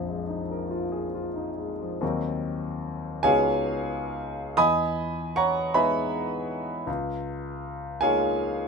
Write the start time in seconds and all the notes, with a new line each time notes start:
Already playing: A#1 F2 F3
0.08 G#3
0.29 D#4
0.51 A#4
0.71 F4
0.92 G#4
1.14 F4
1.36 D#4
1.59 G#3
1.81 F3
2.01 D#2 F#3 C4 D#4 A#4
3.23 C#2 G#3 B3 D#4 F#4 G#4 C#5 F5 G#5
4.57 E2 D#5 G#5 B5 D#6
5.36 C#5 F#5 A#5 C#6
5.74 G#3 B3 D#4 G#4 B4 E5 G#5 B5
6.87 C#2
8.01 G#3 A#3 D#4 F4 G#4 C#5 F5 G#5